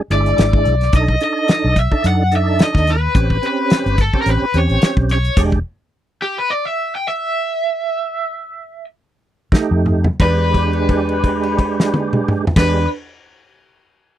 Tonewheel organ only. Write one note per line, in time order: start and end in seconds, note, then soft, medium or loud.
0.10 0.75 G#3 medium
0.10 0.75 D4 medium
0.10 0.75 E4 medium
0.93 1.15 D4 medium
0.93 1.16 D#4 medium
0.93 1.16 A4 medium
1.21 1.75 D4 medium
1.21 1.75 D#4 medium
1.21 1.75 A4 medium
1.91 2.23 D4 medium
1.91 2.23 D#4 medium
1.91 2.23 A4 medium
2.31 2.96 D4 medium
2.31 2.96 D#4 medium
2.31 2.97 A4 medium
3.15 3.37 C4 medium
3.15 3.37 C#4 medium
3.15 3.38 G4 medium
3.42 3.96 C4 medium
3.42 3.96 C#4 medium
3.42 3.96 G4 medium
4.14 4.45 C4 medium
4.14 4.46 C#4 medium
4.14 4.46 G4 medium
4.54 5.18 C4 medium
4.54 5.18 C#4 medium
4.54 5.19 G4 medium
5.37 5.59 G#3 medium
5.37 5.60 D4 medium
5.37 5.60 G4 medium
9.52 10.08 A3 medium
9.52 10.08 D#4 medium
9.52 10.08 G4 medium
10.20 12.45 G#3 medium
10.20 12.45 D4 medium
10.20 12.45 G4 medium
12.57 12.86 G#3 medium
12.57 12.86 D4 medium
12.57 12.86 G4 medium